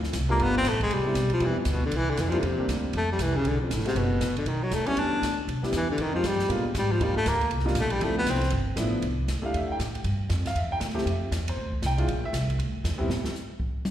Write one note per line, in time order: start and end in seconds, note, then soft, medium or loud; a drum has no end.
0.00 0.13 D2 loud
0.00 snare medium
0.13 0.38 C2 loud
0.13 kick soft
0.13 snare medium
0.13 hi-hat pedal medium
0.13 ride medium
0.29 0.62 G3 medium
0.29 0.63 A3 medium
0.29 0.44 A#3 loud
0.29 0.63 B3 medium
0.29 0.63 D4 medium
0.29 0.63 F4 medium
0.39 0.64 G1 medium
0.39 0.57 B3 loud
0.39 kick soft
0.39 ride medium
0.58 0.70 C4 loud
0.64 0.89 A1 loud
0.64 kick soft
0.64 snare medium
0.64 hi-hat pedal medium
0.64 ride medium
0.69 0.82 A3 loud
0.80 0.95 G#3 loud
0.80 kick medium
0.80 ride medium
0.90 1.15 C2 medium
0.90 1.33 G3 loud
0.90 kick soft
0.90 ride medium
1.04 1.14 G3 medium
1.04 1.14 B3 medium
1.04 1.14 C4 medium
1.04 1.14 D4 medium
1.04 1.15 E4 medium
1.15 1.40 B1 loud
1.15 kick soft
1.15 snare medium
1.15 hi-hat pedal medium
1.15 ride medium
1.30 1.47 F3 loud
1.30 ride medium
1.40 1.65 E2 medium
1.40 1.54 G3 medium
1.40 1.54 B3 medium
1.40 1.55 C4 medium
1.40 1.55 D4 medium
1.40 1.55 E4 medium
1.40 kick soft
1.40 ride medium
1.45 1.58 E3 medium
1.59 1.72 G2 soft
1.65 1.91 D2 loud
1.65 kick soft
1.65 snare medium
1.65 hi-hat pedal medium
1.65 ride medium
1.71 1.84 B2 medium
1.85 1.98 D3 medium
1.91 2.16 C2 medium
1.91 kick soft
1.91 ride medium
1.97 2.12 E3 loud
2.10 2.23 D3 loud
2.17 2.42 F2 loud
2.17 kick soft
2.17 snare medium
2.17 hi-hat pedal medium
2.17 ride medium
2.21 2.31 E3 medium
2.29 2.40 F3 loud
2.29 2.41 G3 medium
2.29 2.41 A#3 medium
2.29 2.41 C4 medium
2.29 2.42 D4 medium
2.29 2.41 E4 medium
2.29 ride soft
2.39 2.67 E2 medium
2.39 2.48 D3 medium
2.39 kick soft
2.39 ride medium
2.46 2.70 C3 medium
2.57 2.91 G3 medium
2.57 2.91 A#3 medium
2.57 2.92 C4 medium
2.57 2.92 D4 medium
2.57 2.92 G4 medium
2.68 2.93 D2 loud
2.68 kick soft
2.68 snare medium
2.68 hi-hat pedal medium
2.68 ride medium
2.93 3.18 F2 loud
2.93 3.10 A3 medium
2.93 kick soft
2.93 ride medium
3.12 3.23 G3 medium
3.19 3.43 C2 loud
3.19 3.38 E3 medium
3.19 kick soft
3.19 snare medium
3.19 hi-hat pedal medium
3.19 ride medium
3.36 3.49 C#3 loud
3.44 3.69 B1 medium
3.44 3.60 D3 medium
3.44 kick soft
3.44 ride medium
3.60 3.73 F2 medium
3.70 3.84 A1 loud
3.70 3.86 A2 medium
3.70 kick soft
3.70 snare medium
3.70 hi-hat pedal medium
3.70 ride medium
3.80 snare soft
3.84 3.99 C3 loud
3.84 3.94 G#3 medium
3.84 3.94 A3 medium
3.84 3.95 C4 medium
3.84 3.95 E4 medium
3.84 3.95 F#4 medium
3.84 muted upright bass stroke soft
3.84 snare medium
3.84 ride medium
3.95 4.20 F#1 medium
3.95 4.37 B2 medium
3.95 kick soft
3.95 ride medium
4.20 4.45 A#1 medium
4.20 kick soft
4.20 snare medium
4.20 hi-hat pedal medium
4.20 ride medium
4.36 4.50 D3 medium
4.36 ride soft
4.46 4.71 B1 medium
4.46 4.64 D#3 medium
4.46 kick soft
4.46 ride medium
4.63 4.76 F#3 loud
4.71 4.96 D#2 medium
4.71 4.88 A3 loud
4.71 kick soft
4.71 snare medium
4.71 hi-hat pedal medium
4.71 ride medium
4.85 5.19 G3 medium
4.85 5.19 B3 medium
4.85 5.01 C#4 loud
4.85 5.20 D4 medium
4.85 5.20 E4 medium
4.85 5.20 G4 medium
4.85 ride medium
4.96 5.21 E2 medium
4.96 5.39 D4 loud
4.96 kick soft
4.96 ride medium
5.22 5.47 D2 loud
5.22 kick soft
5.22 snare medium
5.22 hi-hat pedal medium
5.22 ride medium
5.48 5.62 B1 medium
5.48 kick soft
5.48 ride medium
5.62 5.72 G3 medium
5.62 5.72 B3 medium
5.62 5.72 D4 medium
5.62 5.72 E4 medium
5.62 5.73 G4 medium
5.62 muted upright bass stroke soft
5.62 snare medium
5.72 5.97 E2 loud
5.72 5.89 E3 loud
5.72 kick soft
5.72 snare medium
5.72 hi-hat pedal medium
5.72 ride medium
5.90 6.03 D3 medium
5.98 6.23 F2 medium
5.98 kick soft
5.98 ride medium
6.02 6.15 D#3 loud
6.13 6.28 F3 medium
6.13 6.22 G#3 medium
6.13 6.22 C4 medium
6.13 6.22 D#4 medium
6.13 6.23 F4 medium
6.13 6.23 G4 medium
6.24 6.48 G2 medium
6.24 6.51 G3 loud
6.24 kick soft
6.24 snare medium
6.24 hi-hat pedal medium
6.24 ride medium
6.39 snare medium
6.49 6.74 A#2 medium
6.49 6.62 G#3 medium
6.49 6.63 A#3 medium
6.49 6.63 B3 medium
6.49 6.63 D4 medium
6.49 6.63 F4 medium
6.49 kick soft
6.49 ride medium
6.74 6.99 G#2 loud
6.74 6.94 G3 medium
6.74 kick soft
6.74 snare medium
6.74 hi-hat pedal medium
6.74 ride medium
6.92 7.05 F3 loud
7.00 7.14 D#2 medium
7.00 7.14 G3 medium
7.00 7.16 G3 medium
7.00 7.14 A#3 medium
7.00 7.14 D4 medium
7.00 7.14 D#4 medium
7.00 7.14 F4 medium
7.00 kick soft
7.00 ride medium
7.15 7.30 A3 loud
7.15 muted upright bass stroke soft
7.25 7.50 D2 medium
7.25 7.52 A#3 loud
7.25 kick soft
7.25 snare medium
7.25 hi-hat pedal medium
7.25 ride medium
7.41 ride medium
7.50 7.74 C2 medium
7.50 kick soft
7.50 ride medium
7.59 snare soft
7.64 7.74 G3 medium
7.64 7.74 A#3 medium
7.64 7.74 D4 medium
7.64 7.75 D#4 medium
7.64 7.75 F4 medium
7.64 snare soft
7.75 8.00 A#1 loud
7.75 kick soft
7.75 snare medium
7.75 hi-hat pedal medium
7.75 ride medium
7.80 7.93 A3 loud
7.90 8.05 G3 loud
7.90 ride medium
8.01 8.25 D2 loud
8.01 8.38 F3 medium
8.01 8.38 A3 medium
8.01 8.17 A3 loud
8.01 8.39 C4 medium
8.01 8.39 D4 medium
8.01 8.39 E4 medium
8.01 kick soft
8.01 ride medium
8.18 8.31 B3 loud
8.26 8.51 C2 medium
8.26 8.53 C4 medium
8.26 kick soft
8.26 snare medium
8.26 hi-hat pedal medium
8.26 ride medium
8.35 snare soft
8.41 snare medium
8.41 ride medium
8.50 8.76 G1 loud
8.50 kick soft
8.50 ride medium
8.76 9.01 A1 loud
8.76 9.02 F3 medium
8.76 9.02 A3 medium
8.76 9.02 B3 medium
8.76 9.02 D4 medium
8.76 9.03 E4 loud
8.76 kick soft
8.76 snare medium
8.76 hi-hat pedal medium
8.76 ride medium
9.02 9.27 C2 medium
9.02 kick soft
9.02 ride medium
9.28 9.53 D2 medium
9.28 kick soft
9.28 snare medium
9.28 hi-hat pedal medium
9.28 ride medium
9.42 9.76 A3 medium
9.42 9.76 D4 medium
9.42 9.76 E4 medium
9.42 9.77 G4 medium
9.42 9.54 F5 medium
9.54 9.68 E2 medium
9.54 9.70 E5 medium
9.54 kick soft
9.54 ride medium
9.69 9.80 G5 medium
9.69 muted upright bass stroke soft
9.79 10.04 A2 medium
9.79 kick soft
9.79 snare medium
9.79 hi-hat pedal soft
9.79 ride medium
9.95 ride medium
10.04 10.29 G2 medium
10.04 kick soft
10.04 ride medium
10.30 10.54 F2 loud
10.30 kick soft
10.30 snare medium
10.30 hi-hat pedal medium
10.30 ride medium
10.45 10.56 F5 medium
10.45 snare medium
10.45 ride medium
10.55 10.80 E2 medium
10.55 10.71 E5 medium
10.55 kick soft
10.55 ride medium
10.72 10.78 G5 loud
10.80 11.05 D2 loud
10.80 kick soft
10.80 snare medium
10.80 hi-hat pedal medium
10.80 ride medium
10.89 snare soft
10.94 11.04 A3 medium
10.94 11.04 C4 medium
10.94 11.04 E4 medium
10.94 11.04 G4 medium
10.94 snare soft
11.06 11.30 F2 medium
11.06 11.45 E5 medium
11.06 kick soft
11.06 ride medium
11.31 11.56 E2 medium
11.31 kick soft
11.31 snare medium
11.31 hi-hat pedal medium
11.31 ride medium
11.48 11.72 C5 medium
11.48 ride medium
11.57 11.81 D2 medium
11.57 kick soft
11.72 kick medium
11.82 12.07 C2 loud
11.82 snare medium
11.82 hi-hat pedal medium
11.82 ride medium
11.86 12.22 G5 loud
11.97 12.06 G#3 medium
11.97 12.06 D4 medium
11.97 12.07 E4 medium
11.97 12.07 F4 medium
11.97 ride medium
12.08 12.32 A#1 medium
12.08 kick soft
12.08 ride medium
12.25 12.48 E5 loud
12.33 12.57 C2 loud
12.33 kick soft
12.33 snare medium
12.33 hi-hat pedal medium
12.33 ride medium
12.49 kick soft
12.49 ride medium
12.59 12.83 D2 medium
12.59 ride medium
12.84 12.92 E2 medium
12.84 kick soft
12.84 snare medium
12.84 hi-hat pedal medium
12.84 ride medium
12.92 13.00 D2 medium
12.98 13.07 A#1 medium
12.98 13.07 G3 medium
12.98 13.07 B3 medium
12.98 13.07 C4 medium
12.98 13.08 E4 medium
13.08 13.23 A2 medium
13.08 snare loud
13.25 snare medium
13.35 hi-hat pedal medium
13.60 kick medium
13.85 hi-hat pedal medium
13.85 high tom medium